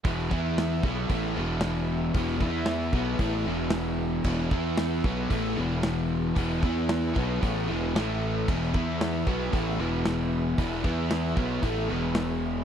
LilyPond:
<<
  \new Staff \with { instrumentName = "Tonewheel organ" } { \time 4/4 \key e \major \tempo 4 = 114 <b e' gis' e''>1~ | <b e' gis' e''>1 | <b e' gis'>1~ | <b e' gis'>2. <e' a' e''>4 |
<b e' gis' e''>1~ | <b e' gis' e''>1 | }
  \new Staff \with { instrumentName = "Overdriven electric guitar" } { \clef bass \time 4/4 \key e \major <e, b, e>8 <e b e'>4 <b, fis b>8 <a, e a>8 <e, b, e>4. | <e, b, e>8 <e b e'>4 <b, fis b>8 <a, e a>8 <e, b, e>4. | <e, b, e>8 <e b e'>4 <b, fis b>8 <a, e a>8 <e, b, e>4. | <e, b, e>8 <e b e'>4 <b, fis b>8 <a, e a>8 <e, b, e>8 <a, e a>4 |
<e, b, e>8 <e b e'>4 <b, fis b>8 <a, e a>8 <e, b, e>4. | <e, b, e>8 <e b e'>4 <b, fis b>8 <a, e a>8 <e, b, e>4. | }
  \new Staff \with { instrumentName = "Overdriven electric guitar" } { \clef bass \time 4/4 \key e \major <e, b, e>8 <e b e'>4 <b, fis b>8 <a, e a>8 <e, b, e>4. | <e, b, e>8 <e b e'>4 <b, fis b>8 <a, e a>8 <e, b, e>4. | <e, b, e>8 <e b e'>4 <b, fis b>8 <a, e a>8 <e, b, e>4. | <e, b, e>8 <e b e'>4 <b, fis b>8 <a, e a>8 <e, b, e>8 <a, e a>4 |
<e, b, e>8 <e b e'>4 <b, fis b>8 <a, e a>8 <e, b, e>4. | <e, b, e>8 <e b e'>4 <b, fis b>8 <a, e a>8 <e, b, e>4. | }
  \new Staff \with { instrumentName = "Fingered electric bass" } { \clef bass \time 4/4 \key e \major e,,8 e,4 b,,8 a,,8 e,,4. | e,,8 e,4 b,,8 a,,8 e,,4. | e,,8 e,4 b,,8 a,,8 e,,4. | e,,8 e,4 b,,8 a,,8 e,,8 a,,4 |
e,,8 e,4 b,,8 a,,8 e,,4. | e,,8 e,4 b,,8 a,,8 e,,4. | }
  \new DrumStaff \with { instrumentName = "Drums" } \drummode { \time 4/4 <hho bd>16 sn16 bd8 <hho sn>8 bd8 <hho bd>4 <hho sn>4 | <hho bd>16 sn16 bd8 <hho sn>8 bd8 <hho bd>4 <hho sn>4 | <cymc bd>8 bd8 <hho sn>8 bd8 <hho bd>4 <hho sn>4 | <hho bd>16 sn16 bd8 <hho sn>8 bd8 <hho bd>4 <hho sn>4 |
<cymc bd>16 sn16 bd8 <hho sn>8 bd8 <hho bd>4 <hho sn>4 | <hho bd>8 bd8 <hho sn>8 bd8 <hho bd>4 <hho sn>4 | }
>>